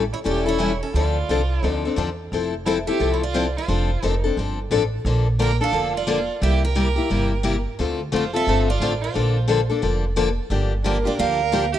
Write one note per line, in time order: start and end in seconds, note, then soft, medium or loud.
0.00 0.11 A1 medium
0.13 0.19 E4 medium
0.13 0.19 C#5 medium
0.24 0.81 E1 medium
0.24 0.45 E3 medium
0.24 0.46 G3 medium
0.24 0.46 C#4 medium
0.24 0.45 E4 medium
0.24 0.46 G4 medium
0.24 0.44 A4 medium
0.24 0.46 D5 medium
0.46 0.59 C#4 medium
0.46 0.59 E4 medium
0.46 0.79 E4 medium
0.46 0.59 A4 medium
0.46 0.80 C#5 medium
0.58 0.71 E3 medium
0.58 0.71 G3 medium
0.58 0.71 C#4 medium
0.58 0.71 E4 medium
0.58 0.71 A4 medium
0.82 0.94 C#4 medium
0.82 0.94 A4 medium
0.94 1.22 D2 medium
0.94 1.16 D3 medium
0.94 1.16 F3 medium
0.94 1.16 C4 medium
0.94 1.16 D4 medium
0.94 1.65 F4 medium
0.94 1.17 A4 medium
0.94 1.65 D5 medium
1.29 1.58 C2 medium
1.29 1.40 D3 medium
1.29 1.40 F3 medium
1.29 1.41 C4 medium
1.29 1.41 D4 medium
1.29 1.41 A4 medium
1.63 1.92 D2 medium
1.63 1.83 D3 medium
1.63 1.84 F3 medium
1.63 1.84 C4 medium
1.63 1.84 D4 medium
1.63 1.94 D#4 medium
1.63 1.84 A4 medium
1.63 1.94 C5 medium
1.85 1.97 C4 medium
1.85 1.96 D4 soft
1.85 1.97 A4 medium
1.96 2.26 E2 medium
1.96 2.08 D3 medium
1.96 2.08 F3 medium
1.96 2.09 C4 medium
1.96 2.08 D4 medium
1.96 2.09 A4 medium
2.32 2.86 F1 medium
2.32 2.53 F3 medium
2.32 2.53 C4 medium
2.32 2.54 E4 medium
2.32 2.54 A4 medium
2.66 2.77 F3 medium
2.66 2.77 C4 medium
2.66 2.75 E4 medium
2.66 2.77 E4 medium
2.66 2.78 A4 medium
2.66 2.73 C5 medium
2.87 2.98 C4 soft
2.87 2.99 E4 soft
2.87 3.11 G4 medium
2.87 2.99 A4 medium
2.87 3.13 E5 loud
2.99 3.55 C2 medium
2.99 3.21 F3 medium
2.99 3.21 C4 medium
2.99 3.21 E4 medium
2.99 3.21 A4 medium
3.13 3.21 E4 medium
3.13 3.22 C#5 medium
3.22 3.53 F4 medium
3.22 3.54 D5 medium
3.34 3.45 F3 medium
3.34 3.45 C4 medium
3.34 3.46 E4 medium
3.34 3.46 A4 loud
3.57 4.05 F4 medium
3.57 4.05 C5 medium
3.68 3.96 F1 medium
3.68 3.89 F3 medium
3.68 3.89 C4 medium
3.68 3.90 D4 medium
3.68 3.90 A4 medium
4.02 4.32 F1 medium
4.02 4.13 F3 medium
4.02 4.14 C4 medium
4.02 4.14 D4 medium
4.02 4.20 D#4 medium
4.02 4.14 A4 medium
4.02 4.21 A#4 medium
4.24 4.37 C4 soft
4.24 4.37 D4 soft
4.24 4.36 A4 medium
4.37 4.66 G1 medium
4.37 4.58 F3 medium
4.37 4.58 C4 medium
4.37 4.59 D4 medium
4.37 4.59 A4 medium
4.71 5.00 A1 medium
4.71 4.82 F3 medium
4.71 4.82 C4 medium
4.71 4.82 D4 medium
4.71 4.82 A4 loud
5.05 5.59 A#1 medium
5.05 5.26 D3 medium
5.05 5.26 F3 medium
5.05 5.26 A#3 medium
5.05 5.27 D4 medium
5.05 5.27 A4 medium
5.39 5.50 D3 medium
5.39 5.50 F3 medium
5.39 5.50 A#3 medium
5.39 5.50 D4 medium
5.39 5.50 A4 loud
5.39 5.59 A#4 medium
5.39 5.62 G5 medium
5.61 5.72 A#3 soft
5.61 5.72 D4 medium
5.61 5.73 A4 medium
5.61 5.92 A4 medium
5.61 5.94 F5 loud
5.72 6.27 F1 medium
5.72 5.94 D3 medium
5.72 5.94 F3 medium
5.72 5.94 A#3 medium
5.72 5.94 D4 medium
5.72 5.95 A4 medium
5.96 6.39 F4 medium
5.96 6.44 D5 medium
6.07 6.18 D3 medium
6.07 6.18 F3 medium
6.07 6.19 A#3 loud
6.07 6.19 D4 loud
6.07 6.19 A4 loud
6.42 6.96 C2 medium
6.42 6.63 C3 medium
6.42 6.63 G3 medium
6.42 6.63 A#3 medium
6.42 6.63 E4 medium
6.42 6.63 G4 medium
6.42 6.62 E5 loud
6.65 7.62 A#4 medium
6.65 7.62 G5 medium
6.75 6.87 C3 medium
6.75 6.87 G3 medium
6.75 6.87 A#3 medium
6.75 6.87 E4 medium
6.75 6.87 G4 medium
6.96 7.09 A#3 soft
6.96 7.10 E4 medium
6.96 7.09 G4 medium
7.10 7.65 G1 medium
7.10 7.31 C3 medium
7.10 7.31 G3 medium
7.10 7.31 A#3 medium
7.10 7.31 E4 medium
7.10 7.31 G4 medium
7.43 7.55 C3 medium
7.43 7.55 G3 medium
7.43 7.55 A#3 medium
7.43 7.55 E4 medium
7.43 7.55 G4 loud
7.79 8.06 D2 medium
7.79 7.99 D3 medium
7.79 8.00 A3 medium
7.79 8.00 C4 medium
7.79 8.00 F4 medium
7.79 8.00 A4 medium
8.12 8.42 F1 medium
8.12 8.23 D3 medium
8.12 8.23 A3 medium
8.12 8.24 C4 medium
8.12 8.24 F4 medium
8.12 8.33 F4 medium
8.12 8.24 A4 medium
8.16 8.34 C5 medium
8.33 8.47 C4 soft
8.33 8.46 F4 medium
8.33 8.46 A4 medium
8.33 8.65 A4 medium
8.33 8.70 E5 loud
8.47 8.76 G1 medium
8.47 8.68 D3 medium
8.47 8.68 A3 medium
8.47 8.69 C4 medium
8.47 8.68 F4 medium
8.47 8.69 A4 medium
8.69 9.00 F4 medium
8.69 9.01 D5 medium
8.80 9.09 A1 medium
8.80 8.92 D3 loud
8.80 8.92 A3 medium
8.80 8.92 C4 medium
8.80 8.92 F4 medium
8.80 8.93 A4 medium
9.01 9.66 F4 medium
9.01 9.67 C5 medium
9.14 9.70 A#1 medium
9.14 9.35 D3 medium
9.14 9.36 F3 medium
9.14 9.36 A#3 medium
9.14 9.36 D4 medium
9.14 9.36 A4 medium
9.48 9.59 D3 medium
9.48 9.60 F3 medium
9.48 9.60 A#3 medium
9.48 9.60 D4 medium
9.48 9.60 A4 loud
9.70 9.81 A#3 soft
9.70 9.82 D4 medium
9.70 9.82 A4 medium
9.82 10.37 F1 medium
9.82 10.04 D3 medium
9.82 10.04 F3 medium
9.82 10.04 A#3 medium
9.82 10.04 D4 medium
9.82 10.04 A4 medium
10.16 10.28 D3 medium
10.16 10.28 F3 medium
10.16 10.28 A#3 medium
10.16 10.28 D4 loud
10.16 10.28 A4 loud
10.50 11.05 G1 medium
10.50 10.72 D3 medium
10.50 10.72 F3 medium
10.50 10.72 A#3 medium
10.50 10.72 D4 medium
10.50 10.72 G4 medium
10.83 10.96 D3 medium
10.83 10.96 F3 medium
10.83 10.96 A#3 medium
10.83 11.04 D4 medium
10.83 10.96 D4 medium
10.83 10.97 G4 medium
10.83 11.07 A#4 medium
11.05 11.18 A#3 medium
11.05 11.18 D4 medium
11.05 11.18 F4 medium
11.05 11.18 G4 medium
11.05 11.19 D5 medium
11.18 11.73 D2 medium
11.18 11.40 D3 medium
11.18 11.40 F3 medium
11.18 11.40 A#3 medium
11.18 11.40 D4 medium
11.18 11.40 G4 medium
11.18 11.70 A#4 loud
11.18 11.74 F5 loud
11.52 11.64 D3 medium
11.52 11.64 F3 loud
11.52 11.64 A#3 medium
11.52 11.64 D4 loud
11.52 11.64 G4 loud
11.72 11.79 G4 medium
11.72 11.79 E5 loud